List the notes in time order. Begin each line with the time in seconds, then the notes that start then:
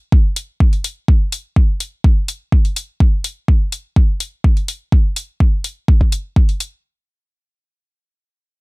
0.12 kick
0.36 open hi-hat
0.60 kick
0.73 open hi-hat
0.84 open hi-hat
1.08 kick
1.32 open hi-hat
1.56 kick
1.80 open hi-hat
2.04 kick
2.28 open hi-hat
2.52 kick
2.65 open hi-hat
2.76 open hi-hat
3.00 kick
3.24 open hi-hat
3.48 kick
3.72 open hi-hat
3.96 kick
4.20 open hi-hat
4.44 kick
4.57 open hi-hat
4.68 open hi-hat
4.92 kick
5.16 open hi-hat
5.40 kick
5.64 open hi-hat
5.88 kick
6.01 kick
6.12 open hi-hat
6.36 kick
6.49 open hi-hat
6.60 open hi-hat